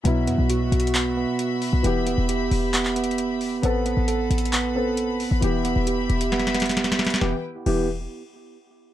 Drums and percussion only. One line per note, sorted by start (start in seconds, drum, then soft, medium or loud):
0.05 closed hi-hat medium
0.27 closed hi-hat medium
0.50 closed hi-hat medium
0.72 closed hi-hat medium
0.80 closed hi-hat medium
0.87 closed hi-hat medium
0.95 clap loud
0.95 closed hi-hat medium
1.39 closed hi-hat medium
1.62 open hi-hat medium
1.84 closed hi-hat medium
2.07 closed hi-hat medium
2.29 closed hi-hat medium
2.51 open hi-hat medium
2.74 clap loud
2.74 closed hi-hat medium
2.85 clap medium
2.96 closed hi-hat medium
3.04 closed hi-hat medium
3.11 closed hi-hat soft
3.18 closed hi-hat medium
3.41 open hi-hat medium
3.63 closed hi-hat medium
3.86 closed hi-hat medium
4.08 closed hi-hat medium
4.31 closed hi-hat medium
4.38 closed hi-hat medium
4.45 closed hi-hat medium
4.53 clap loud
4.53 closed hi-hat medium
4.97 closed hi-hat medium
5.20 open hi-hat medium
5.42 closed hi-hat medium
5.65 closed hi-hat medium
5.87 closed hi-hat medium
6.10 closed hi-hat medium
6.10 open hi-hat medium
6.21 closed hi-hat medium
6.32 snare medium
6.32 closed hi-hat soft
6.39 snare medium
6.39 closed hi-hat soft
6.47 snare medium
6.47 closed hi-hat medium
6.54 snare medium
6.54 closed hi-hat medium
6.60 snare medium
6.60 closed hi-hat medium
6.62 closed hi-hat medium
6.66 snare medium
6.66 closed hi-hat medium
6.69 closed hi-hat medium
6.71 closed hi-hat medium
6.77 snare medium
6.77 closed hi-hat medium
6.84 snare medium
6.84 closed hi-hat medium
6.92 snare loud
6.92 closed hi-hat medium
6.99 snare medium
6.99 closed hi-hat soft
7.05 snare loud
7.05 closed hi-hat medium
7.10 snare loud
7.10 closed hi-hat medium
7.16 closed hi-hat medium
7.21 snare medium
7.66 crash medium